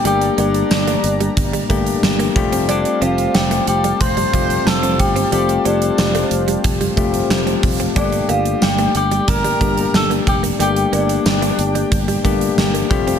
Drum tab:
HH |xxxx-xxxxxxx-xxx|xxxx-xxxxxxx-xxx|xxxx-xxxxxxx-xox|xxxx-xxxxxxx-xxx|
TB |----x-------x---|----x-------x---|----x-------x---|----x-------x---|
SD |----o-------o---|----o-------o---|----o-------o---|----o-------o---|
BD |--------o-o---o-|--------o-o---o-|--------o-o---o-|o-------o-o---o-|

HH |xxxx-xxxxxxx-xxx|
TB |----x-------x---|
SD |----o-------o---|
BD |--------o-o---o-|